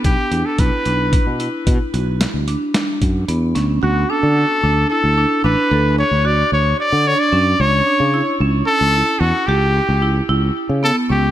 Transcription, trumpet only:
X:1
M:7/4
L:1/16
Q:1/4=111
K:D
V:1 name="Trumpet"
G3 A B6 z16 z2 | F2 A6 A4 B4 c2 d2 c2 d2 c d3 | c6 z2 A4 F2 G6 z4 A2 G2 |]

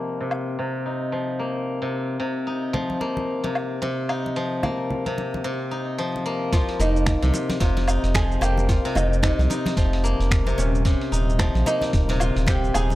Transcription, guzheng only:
X:1
M:4/4
L:1/16
Q:"Swing 16ths" 1/4=111
K:Ebmix
V:1 name="Guzheng" clef=bass
B, C, z2 C, z E2 F,2 B,3 C, z2 | C, z E2 F,2 B,3 C, z2 C, z E2 | F,2 B,3 C, z2 C, z E2 F,2 B,2 | F,2 B,3 C, z2 C, z E2 F,2 B,2- |
B, C, z2 C, z E2 F,2 B,3 C, z2 | C, z E2 F,2 B,3 C, z2 C, z E2 |]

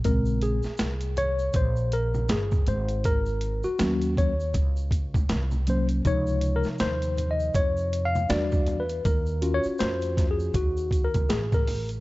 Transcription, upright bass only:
X:1
M:4/4
L:1/16
Q:"Swing 16ths" 1/4=80
K:Bbm
V:1 name="Upright bass" clef=bass
B,,,3 z C,,4 B,,,4 =G,,,2 A,,,2- | A,,,3 z E,,4 D,,4 C,,4 | D,,3 z E,,4 F,,4 =E,,4 | E,,3 z F,,4 E,,4 =A,,,4 |]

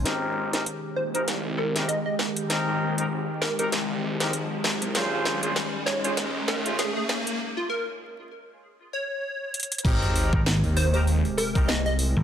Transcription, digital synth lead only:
X:1
M:4/4
L:1/16
Q:"Swing 16ths" 1/4=98
K:Ab
V:1 name="Digital synth lead"
z6 c c z2 B z e e z2 | z6 B B z8 | z6 d d z2 B z A A z2 | z F B z6 z d6 |
z6 c c z2 B z e e z2 |]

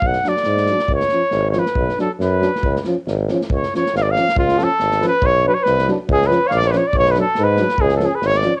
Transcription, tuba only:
X:1
M:2/4
L:1/8
Q:"Swing 16ths" 1/4=140
K:none
V:1 name="Tuba" clef=bass
B,,, z ^G,,2 | ^C,, z ^G,,,2 | B,,, z ^F,,2 | ^C,, z ^G,,,2 |
^C,, z ^G,,,2 | ^C,,2 ^G,,,2 | B,,,2 ^B,,,2 | ^C,,2 ^A,,,2 |
B,,,2 ^G,,2 | ^C,,2 ^G,,,2 |]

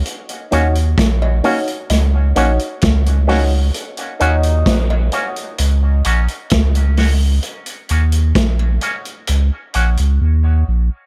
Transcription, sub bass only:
X:1
M:4/4
L:1/16
Q:1/4=65
K:Ebm
V:1 name="Sub bass" clef=bass
z2 E,,2 B,,,2 z2 D,,2 B,,, z D,,4 | z2 E,,2 B,,,2 z2 D,,2 B,,, z D,,4 | z2 E,,2 B,,,2 z2 D,, z B,,, D,, E,,2 B,,, z |]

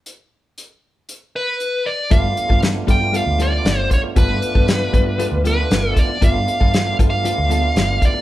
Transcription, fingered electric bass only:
X:1
M:4/4
L:1/16
Q:1/4=117
K:Gmix
V:1 name="Fingered electric bass" clef=bass
z16 | G,,, G,, z G,,3 G,,3 D,,3 G,,,2 z2 | G,,, G,, z G,,3 G,,3 D,,3 G,,,2 z2 | G,,, G,, z G,,3 G,,3 D,,3 G,,,2 z2 |]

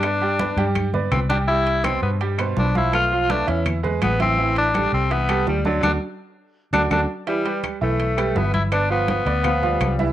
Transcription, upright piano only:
X:1
M:4/4
L:1/8
Q:1/4=166
K:G
V:1 name="Upright piano"
[B,Bd] [G,Gg] [B,Bd] [G,Gg]2 [B,Bd]2 [G,Gg] | [G,Gg]2 [B,,Bc]2 [G,Gg] [B,,Bc]2 [=F,=F=f] | [A,AB] [=F,=F=f] [A,AB] [E,Ee]2 [^G,^GB]2 [E,Ee] | [E,Ee]2 [G,GA]2 [E,Ee] [G,GA]2 [D,Dd] |
[DFA] z4 [DFA] [DFA] z | [E,Ee] [G,GB]2 [E,Ee]2 [G,GB] [E,Ee]2 | [B,Bd] [=F,=F=f]2 [B,Bd] [F,Ff] [F,Ff]2 [E,Ee] |]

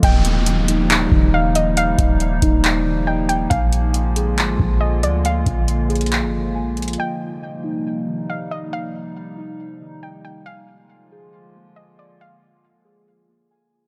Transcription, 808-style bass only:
X:1
M:4/4
L:1/16
Q:1/4=138
K:Eb
V:1 name="808-style bass" clef=bass
E,,,8- E,,,2 E,,,6- | E,,,2 E,,,4 E,,,8- E,,,2 | B,,,8 A,,, B,,, B,,,4 D,,2- | D,,2 B,,,6- B,,, A,,,3- A,,,/2 B,,,3- B,,,/2 |
z16 | z16 | z16 | z16 |]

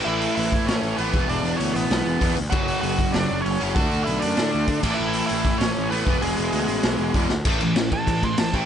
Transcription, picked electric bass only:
X:1
M:4/4
L:1/8
Q:1/4=194
K:A
V:1 name="Picked electric bass" clef=bass
A,,,2 A,,,2 A,,, A,,, A,,, E,,, | E,,, E,,, D,, A,,, B,,, E,,, E,, D,, | F,,,2 F,,,2 F,,, F,,, F,,, F,,, | D,, D,, B,,, F,, A,, D,, D, A,,, |
A,,,2 A,,,2 A,,, A,,, A,,, E,,, | E,,, E,,, D,, A,,, B,,, E,,, E,, D,, | A,,, A,,, A,,, A,,, A,,,2 A,,, A,,, |]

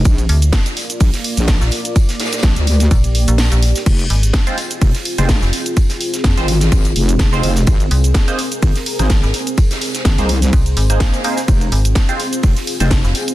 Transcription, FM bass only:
X:1
M:4/4
L:1/16
Q:"Swing 16ths" 1/4=126
K:Fdor
V:1 name="FM bass" clef=bass
z2 D,,2 z8 z B,,, z2 | z8 B,,,3 B,,,2 B,,,2 z | z2 A,,,2 z8 z F,,, z2 | z16 |
z2 C,,2 z8 z A,,, z2 | z8 C,,2 A,,,3 z3 | z2 A,,,2 z8 z F,,, z2 |]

